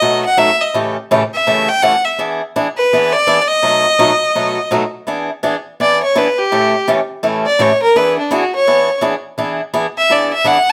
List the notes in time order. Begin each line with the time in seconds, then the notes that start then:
Already playing: D#5
0.01 B2 F#3 A3 D#4 F#4
0.25 F#5
0.37 B2 F#3 A3 D#4 F#4 E5
0.61 D#5
0.74 A2 C#3 E3 A3 C#4 G4
1.11 A2 C#3 E3 A3 C#4 G4
1.34 E5
1.47 A2 C#3 E3 A3 C#4 G4
1.69 G5
1.82 A2 C#3 E3 A3 C#4 G4 F#5
2.05 E5
2.19 E3 B3 D4 G#4
2.56 E3 B3 D4 G#4
2.77 B4
2.93 E3 B3 D4 G#4
3.13 D5
3.27 E3 B3 D4 G#4
3.41 D5
3.48 D#5
3.62 B2 F#3 A3 D#4 F#4
3.99 B2 F#3 A3 D#4 F#4
4.35 B2 F#3 A3 D#4 F#4
4.71 B2 F#3 A3 D#4 F#4
5.07 E3 B3 D4 G#4
5.43 E3 B3 D4 G#4
5.80 E3 B3 D4 G#4 D5
6.03 C#5
6.15 E3 B3 D4 G#4 B4
6.38 G4
6.52 A2 C#3 E3 A3 C#4 G4
6.88 A2 C#3 E3 A3 C#4 G4
7.23 A2 C#3 E3 A3 C#4 G4
7.46 D5
7.59 A2 C#3 E3 A3 C#4 G4 C#5
7.82 A#4
7.96 E3 B3 D4 G#4 B4
8.19 D4
8.31 E3 B3 D4 F#4 G#4
8.55 C#5
8.67 E3 B3 D4 G#4
9.01 E3 B3 D4 G#4
9.38 E3 B3 D4 G#4
9.74 E3 B3 D4 G#4
9.98 E5
10.10 E3 B3 D4 G#4 D5
10.33 E5
10.44 E3 B3 D4 G#4 F#5